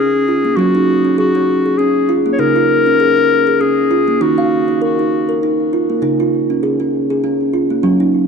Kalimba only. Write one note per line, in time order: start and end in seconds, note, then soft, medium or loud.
0.00 0.54 C#3 medium
0.00 0.28 C#4 medium
0.28 0.45 F4 medium
0.45 0.58 A#3 medium
0.57 2.35 F#3 medium
0.57 0.75 C#4 medium
0.75 1.05 D#4 medium
1.05 1.18 C#4 medium
1.18 1.35 G#4 medium
1.35 1.65 C#4 medium
1.66 1.79 G#4 medium
1.79 2.09 C#4 medium
2.09 2.26 F4 medium
2.26 2.39 A#3 medium
2.39 4.17 C#3 medium
2.39 2.56 D#4 medium
2.56 2.86 F4 medium
2.87 3.00 C#4 medium
3.00 3.17 G#4 medium
3.17 3.47 C#4 medium
3.47 3.61 G#4 medium
3.61 3.91 C#4 medium
3.91 4.08 F4 medium
4.08 4.21 A#3 medium
4.21 5.99 D#3 medium
4.21 4.38 D#4 medium
4.38 4.68 F5 medium
4.68 4.82 D#4 medium
4.82 4.98 A#4 medium
4.99 5.29 D#4 medium
5.29 5.42 A#4 medium
5.43 5.73 D#4 medium
5.73 5.89 F4 medium
5.90 6.03 A#3 medium
6.02 7.80 C#3 medium
6.02 6.19 D#4 medium
6.20 6.50 F4 medium
6.50 6.63 C#4 medium
6.63 6.80 G#4 medium
6.80 7.10 C#4 medium
7.10 7.24 G#4 medium
7.24 7.54 C#4 medium
7.54 7.70 F4 medium
7.70 7.84 A#3 medium
7.83 8.28 F#3 medium
7.83 8.00 C#4 medium
8.00 8.28 D#4 medium